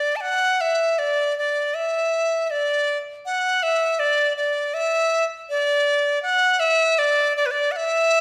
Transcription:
dizi
Already playing: D5
0.16 A5
0.21 F#5
0.61 E5
0.99 D5
1.38 D5
1.74 E5
2.46 E5
2.51 D5
3.26 F#5
3.63 E5
3.99 D5
4.37 D5
4.74 E5
5.50 D5
6.23 F#5
6.60 E5
6.99 D5
7.37 D5
7.46 B4
7.51 D5
7.72 F#5
7.76 E5

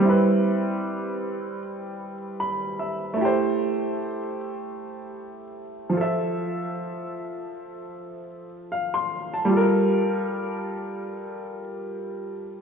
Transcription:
upright piano
Already playing: G3
0.02 C4 E4
0.09 B4
2.40 B5
2.79 E5
3.13 A3 E4
3.21 G4 C5
5.90 F3 F4
5.97 A4 E5
8.72 F5
8.94 C6
9.33 A5
9.45 G3
9.49 F4 A4
9.56 A#4

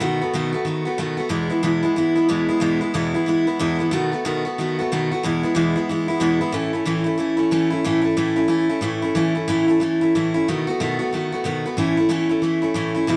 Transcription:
steel-string acoustic guitar
0.00 B2 D#3 A3 B3 F#4
0.21 A3 B3 F#4
0.33 B2 D#3 A3 B3 F#4
0.53 A3 B3 F#4
0.65 D#3 A3 B3 F#4
0.85 A3 B3 F#4
0.98 B2 D#3 A3 B3 F#4
1.17 A3 B3 F#4
1.29 E2 B2 E3 G#3 B3 E4
1.49 E3 G#3 B3 E4
1.63 E2 B2 E3 G#3 B3 E4
1.83 E3 G#3 B3 E4
1.96 E3 G#3 B3 E4
2.15 E3 G#3 B3 E4
2.29 E2 B2 E3 G#3 B3 E4
2.48 E3 G#3 B3 E4
2.60 E2 B2 E3 G#3 B3 E4
2.81 E3 G#3 B3 E4
2.94 E2 B2 E3 G#3 B3 E4
3.14 E3 G#3 B3 E4
3.26 E3 G#3 B3 E4
3.47 E3 G#3 B3 E4
3.59 E2 B2 E3 G#3 B3 E4
3.79 E3 G#3 B3 E4
3.91 B2 D#3 A3 B3 F#4
4.12 A3 B3 F#4
4.25 B2 D#3 A3 B3 F#4
4.45 A3 B3 F#4
4.58 D#3 A3 B3 F#4
4.79 A3 B3 F#4
4.92 B2 D#3 A3 B3 F#4
5.12 A3 B3 F#4
5.23 E2 B2 E3 G#3 B3 E4
5.43 E3 G#3 B3 E4
5.55 E2 B2 E3 G#3 B3 E4
5.76 E3 G#3 B3 E4
5.89 E3 G#3 B3 E4
6.08 E3 G#3 B3 E4
6.20 E2 B2 E3 G#3 B3 E4
6.41 E3 G#3 B3 E4
6.52 A2 E3 A3 C#4 E4
6.73 A3 C#4 E4
6.85 A2 E3 A3 C#4 E4
7.04 A3 C#4 E4
7.18 E3 A3 C#4 E4
7.37 A3 C#4 E4
7.51 A2 E3 A3 C#4 E4
7.70 A3 C#4 E4
7.84 A2 E3 A3 C#4 E4
8.02 A3 C#4 E4
8.17 A2 E3 A3 C#4 E4
8.36 A3 C#4 E4
8.48 E3 A3 C#4 E4
8.69 A3 C#4 E4
8.81 A2 E3 A3 C#4 E4
9.02 A3 C#4 E4
9.15 A2 E3 A3 C#4 E4
9.35 A3 C#4 E4
9.48 A2 E3 A3 C#4 E4
9.67 A3 C#4 E4
9.80 E3 A3 C#4 E4
10.01 A3 C#4 E4
10.15 A2 E3 A3 C#4 E4
10.34 A3 C#4 E4
10.48 B2 D#3 A3 B3 F#4
10.67 A3 B3 F#4
10.80 B2 D#3 A3 B3 F#4
10.99 A3 B3 F#4
11.13 D#3 A3 B3 F#4
11.32 A3 B3 F#4
11.44 B2 D#3 A3 B3 F#4
11.66 A3 B3 F#4
11.77 A2 E3 A3 C#4 E4
11.97 A3 C#4 E4
12.09 A2 E3 A3 C#4 E4
12.29 A3 C#4 E4
12.42 E3 A3 C#4 E4
12.62 A3 C#4 E4
12.74 A2 E3 A3 C#4 E4
12.95 A3 C#4 E4
13.07 E2 B2 E3 G#3 B3 E4

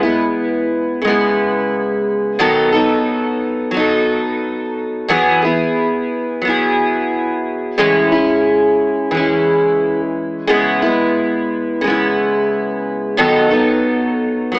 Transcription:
steel-string acoustic guitar
0.03 G#3 B3 E4
1.02 C#3 G#3
1.08 B3 E4
2.39 B2 D#3 F#3 B3 D#4 A4
2.72 F#3 B3 D#4 A4
3.71 F#3 B3
3.77 D#4 A4
5.08 E3 F#3 B3 E4 G#4
5.42 E4 G#4
5.46 B3
6.42 F#3 B3
6.47 E4 G#4
7.78 A2 E3 G#3 C#4 E4
8.12 G#3 C#4 E4
9.11 E3 G#3
9.17 C#4 E4
10.47 C#3 G#3 B3 E4
10.82 B3 E4
10.86 G#3
11.81 C#3 G#3
11.87 B3 E4
13.17 B2 D#3 F#3 B3 D#4 A4
13.50 F#3 B3 D#4 A4
14.51 F#3 B3

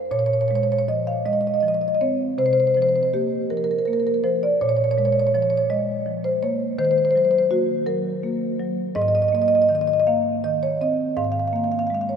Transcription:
marimba
0.11 A#2 C#5
0.19 C#5
0.26 C#5
0.33 C#5
0.41 C#5
0.48 G#3 C#5
0.55 C#5
0.63 C#5
0.72 C#5
0.79 C#5
0.88 F3 D#5
1.07 F5
1.26 G#3 D#5
1.33 D#5
1.41 D#5
1.47 D#5
1.54 D#5
1.61 F3 D#5
1.68 D#5
1.74 D#5
1.81 D#5
1.88 D#5
1.95 D#5
2.01 C4 C#5
2.38 C3 C5
2.46 C5
2.53 C5
2.60 C5
2.67 C5
2.75 F3 C5
2.82 C5
2.89 C5
2.96 C5
3.03 C5
3.14 A#3 G4
3.50 F3 A#4
3.57 A#4
3.64 A#4
3.71 A#4
3.78 A#4
3.86 A#3 A#4
3.93 A#4
4.00 A#4
4.07 A#4
4.14 A#4
4.24 F3 C5
4.43 D5
4.61 A#2 C#5
4.69 C#5
4.77 C#5
4.84 C#5
4.91 C#5
4.98 G#3 C#5
5.05 C#5
5.13 C#5
5.20 C#5
5.27 C#5
5.34 F3 C#5
5.42 C#5
5.50 C#5
5.58 C#5
5.70 G#3 D#5
6.06 F3
6.24 C5
6.43 A#3 C#5
6.78 D#3 C5
6.85 C5
6.91 C5
6.98 C5
7.05 C5
7.11 C5
7.16 F#3 C5
7.25 C5
7.31 C5
7.38 C5
7.51 A#3 F#4
7.86 F#3 A#4
8.23 A#3
8.60 F#3
8.95 G#2 D#5
9.02 D#5
9.08 D#5
9.15 D#5
9.22 D#5
9.28 A#3 D#5
9.35 D#5
9.42 D#5
9.48 D#5
9.55 D#5
9.62 D#5
9.69 D#3 D#5
9.75 D#5
9.81 D#5
9.88 D#5
9.93 D#5
10.00 D#5
10.07 A#3 F5
10.44 D#3 D#5
10.63 C#5
10.81 C4 D#5
11.17 G#2 F5
11.24 F5
11.32 F5
11.40 F5
11.48 F5
11.53 A#3 F5
11.64 F5
11.72 F5
11.79 F5
11.87 G#3 F5
11.95 F5
12.01 F5
12.09 C#5

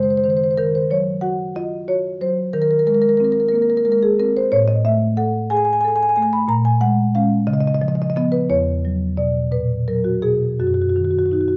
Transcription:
marimba
Already playing: F#2 G#3
0.03 C5
0.10 C5
0.17 C5
0.24 D#3 C5
0.30 C5
0.37 C5
0.44 C5
0.51 C5
0.58 D#3 A#4
0.75 C5
0.90 F#3 C#5
1.21 F#4 F#5
1.56 F4 D#5
1.88 F#4 C#5
2.21 F#3 C5
2.53 D#3 A#4
2.62 A#4
2.71 A#4
2.79 A#4
2.87 G#3 A#4
2.95 A#4
3.02 A#4
3.09 A#4
3.17 C4 A#4
3.24 A#4
3.32 A#4
3.40 A#4
3.48 A#3 A#4
3.55 A#4
3.62 A#4
3.70 A#4
3.77 A#4
3.85 G#3 A#4
3.92 A#4
4.03 G#4
4.19 C4 A#4
4.37 C5
4.52 A2 C#5
4.68 D#5
4.85 A3 E5
5.17 A4 F#5
5.50 G#4 G#5
5.57 G#5
5.65 G#5
5.73 G#5
5.81 A4 G#5
5.88 G#5
5.96 G#5
6.03 G#5
6.09 G#5
6.16 A3 G#5
6.22 G#5
6.33 B5
6.48 A#2 A#5
6.65 G#5
6.81 G#3 F#5
7.15 G#3 C#4 F5
7.47 C#3 D#5
7.54 D#5
7.60 D#5
7.68 D#5
7.74 D#5
7.81 F3 D#5
7.88 D#5
7.95 D#5
8.02 D#5
8.10 D#5
8.16 F3 B3 D#5
8.32 B4
8.50 E2 C#5
8.85 F#3
9.17 B2 D5
9.51 A#2 B4
9.88 F#3 A#4
10.04 F#4
10.22 B2 G#4
10.60 F#2 F#4
10.67 F#4
10.74 F#4
10.81 F#4
10.89 F#4
10.96 D#3 F#4
11.04 F#4
11.11 F#4
11.18 F#4
11.26 F#4
11.32 D#4 F#4
11.41 F#4
11.48 F#4

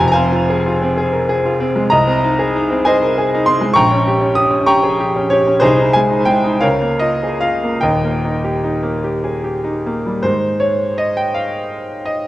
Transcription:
grand piano
0.00 F1 F2
0.08 A#5
0.12 C5 F5 G#5
0.16 C4
0.32 F4
0.50 G#4
0.66 F4
0.82 C4
0.98 G#4
1.13 A#4
1.29 G#4
1.45 F4
1.60 C4
1.76 G#3
1.90 C2 D#5 A#5
2.07 C4
2.24 D#4
2.39 G#4
2.56 D#4
2.70 C4
2.85 G#4 C5 D#5 G#5
3.02 A#4
3.18 G#4
3.34 D#4
3.46 C4 C6
3.61 G#3
3.73 A#1 G5 A#5 C#6
3.91 C#4
4.07 G4
4.21 C#4
4.35 G4 D#6
4.51 C#4
4.66 G4 G5 A#5 C#6
4.83 G#4
5.00 G4
5.16 C#4
5.30 G4 C#5
5.47 C#4
5.60 C2 D#4 G#4 C5
5.79 D#4
5.93 G#3 G#5
6.10 D#4
6.25 G#3 G5
6.44 D#4
6.60 C#2 A#4 C#5 F5
6.82 A#3
6.99 F4 D#5
7.23 G#4
7.41 F4 F5
7.63 A#3
7.81 D#1 D#2 A#4 D#5 G5
8.04 A#3
8.25 D#4
8.44 G4
8.64 D#4
8.83 A#3
9.04 G4
9.24 G#4
9.44 G4
9.65 D#4
9.86 A#3
10.06 G3
10.23 G#2 D#3 G#3 D#4 C5
10.60 C#5
10.98 D#5
11.17 G5
11.34 F5
12.05 D#5

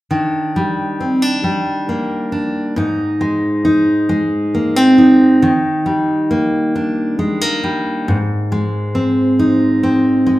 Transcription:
steel-string acoustic guitar
0.11 D#3 D4
0.56 G3
1.00 C4
1.22 D4
1.44 G3
1.89 A#3
2.32 D4
2.76 G#2 D#4
3.21 G#3
3.65 D#4
4.09 G#3
4.55 A#3
4.76 C4
4.98 D#4
5.42 D#3
5.86 G3
6.31 A#3
6.76 D4
7.19 G#3
7.41 A#3
7.64 G3
8.08 G#2
8.52 G#3
8.95 C4
9.39 D#4
9.83 C4
10.26 G#3

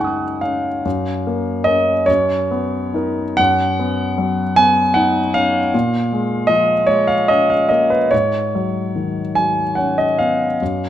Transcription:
grand piano
Already playing: F#2 C#3 G#3 D#4 A#4 F#5 G#5
0.01 C#6 D#6
0.07 F#6
0.41 C#4 F5
0.85 F#2
1.27 A#3
1.64 C#4 A#4 D#5
2.06 F#2 C#5
2.51 B3
2.94 D#4 A#4
3.37 F#2 F#5
3.79 B3
4.18 F#3
4.56 B3 G#5
4.94 D#4 F#5
5.34 C#4 F5
5.74 A#2
6.12 G#3
6.47 F3 D#5
6.87 G#3 C#5
7.07 F5
7.28 C#4 D#5
7.50 F5
7.69 A#3 D#5
7.90 B4
8.11 G#2 C#5
8.55 F#3
8.96 D#3
9.35 F#3 G#5
9.75 C#4 F#5
9.98 D#5
10.19 B3 F5
10.62 F#2

